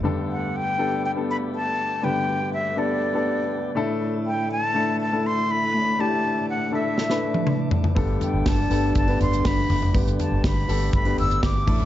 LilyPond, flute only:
\new Staff \with { instrumentName = "Flute" } { \time 4/4 \key g \major \tempo 4 = 121 r8 fis''8 g''4 g''8 b''8 a''4 | g''4 e''8 d''2 r8 | r8 g''8 a''4 a''8 c'''8 b''4 | a''4 fis''8 e''2 r8 |
r8 g''8 a''4 a''8 c'''8 b''4 | r8 a''8 b''4 b''8 e'''8 d'''4 | }